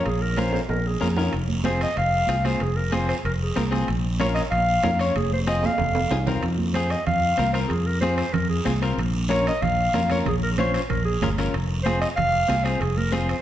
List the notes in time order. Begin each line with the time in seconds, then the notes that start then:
0.05 A#1 G#4, high conga, high timbale, long guiro
0.22 A#4
0.37 C#4 F4 A#4 C5, high conga, high timbale, short guiro
0.52 C5, high timbale, short guiro
0.69 A#1 A#4, high conga, high timbale, long guiro
0.87 G#4
1.01 F2 C#4 F4 A#4, high conga, short guiro
1.16 C#4 F4 A#4, low timbale, short guiro
1.33 F1, high conga, high timbale, long guiro
1.48 high conga
1.64 C4 F4 G#4 C5, high conga, high timbale, short guiro
1.81 D#5, high timbale, short guiro
1.95 F1 F5, high conga, high timbale
2.27 C2 C4 F4 G#4, high conga, high timbale, short guiro
2.44 C4 F4 G#4 C5, high conga, high timbale, short guiro
2.60 F1 G#4, high conga, high timbale, long guiro
2.76 A#4
2.92 C4 F4 G#4 C5, high conga, high timbale, short guiro
3.09 C5, high timbale, short guiro
3.24 F1 A#4, high conga, high timbale, long guiro
3.40 G#4
3.56 C2 C4 F4 A#4, high conga, high timbale, short guiro
3.71 C4 F4 G#4, high conga, high timbale, short guiro
3.88 A#1, high conga, high timbale, long guiro
4.20 C#4 F4 A#4 C#5, high conga, high timbale, short guiro
4.34 D#5, high timbale, short guiro
4.51 A#1 F5, high conga, high timbale, long guiro
4.83 F2 C#4 F4 A#4, high conga, high timbale, low timbale, short guiro
4.99 C#4 F4 C#5, high timbale, short guiro
5.16 F1 G#4, high conga, high timbale, long guiro
5.33 C5, high conga
5.47 C4 F4 G#4 D#5, high timbale, short guiro
5.63 F5, high conga, high timbale, short guiro
5.78 F1, low conga, high timbale, long guiro
5.95 high timbale
6.11 C2 C4 F4 G#4, low timbale, short guiro
6.27 C4 F4 A#4, low conga, low timbale, short guiro
6.43 F2, high conga, high timbale, long guiro
6.58 high conga
6.74 C4 F4 G#4 C5, high conga, high timbale, short guiro
6.90 D#5, high timbale, short guiro
7.06 F2 F5, high conga, low conga, high timbale, long guiro
7.38 C2 C4 F4 A#4, high conga, high timbale, short guiro
7.53 C4 F4 A#4 C5, high timbale, short guiro
7.68 F2 G#4, high conga, high timbale, long guiro
7.86 A#4
8.01 C4 F4 G#4 C5, high conga, high timbale, short guiro
8.17 C5, high timbale, short guiro
8.33 F2 A#4, high conga, low conga, high timbale, long guiro
8.49 G#4
8.65 C2 C4 F4 G#4, high conga, high timbale, short guiro
8.82 C4 F4 A#4, high timbale, short guiro
8.97 A#1, high conga, high timbale, long guiro
9.29 C#4 F4 A#4 C#5, high conga, high timbale, short guiro
9.47 D#5, high timbale, short guiro
9.62 A#1 F5, high conga, low conga, high timbale, long guiro
9.94 F2 C#4 F4 A#4, high conga, high timbale, short guiro
10.10 C#4 F4 A#4 C#5, high conga, high timbale, short guiro
10.25 A#1 G#4, high conga, low conga, high timbale, long guiro
10.43 A#4
10.58 C#4 F4 C5 C#5, high conga, high timbale, short guiro
10.74 C5, high timbale, short guiro
10.89 A#1 A#4, high conga, low conga, high timbale, long guiro
11.05 G#4
11.22 G1 C#4 F4 A#4, high conga, low conga, high timbale, short guiro
11.38 C#4 F4 A#4, high timbale, short guiro
11.53 F1, high conga, high timbale, long guiro
11.83 C4 F4 G#4 C5, high conga, high timbale, short guiro
12.01 D#5, high timbale, short guiro
12.16 F1 F5, high conga, low conga, high timbale, long guiro
12.48 C2 C4 F4 G#4, high conga, high timbale, short guiro
12.64 C4 F4 G#4 C5, high timbale, short guiro
12.80 F1 G#4, high conga, high timbale, long guiro
12.97 A#4, high conga
13.12 C4 F4 G#4 C5, high conga, high timbale, short guiro
13.29 C5, high timbale, short guiro